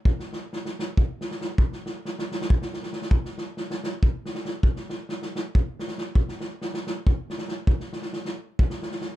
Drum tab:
SD |-oo-ooo---ooo-|-oo-oooo-ooooo|-oo-ooo---ooo-|-oo-ooo---ooo-|
BD |o-------o-----|o-------o-----|o-------o-----|o-------o-----|

SD |-oo-ooo---ooo-|-ooooo---oooo-|
BD |o-------o-----|o-------o-----|